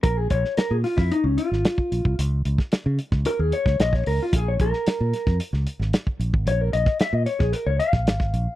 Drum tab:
HH |x-x-x-o-x-x-x-x-|x-x-x-x-x-x-x-o-|x-x-x-x-x-x-x-x-|x-x-x-x-x-x-x-x-|
SD |---oo-oo---oo---|---oo--o---ooo--|---oo-oo-o-oo---|---oo--o---ooo--|
BD |o-o----o-----o-o|---o---o---o-o--|o-o----o-----o-o|---o---o---o-o--|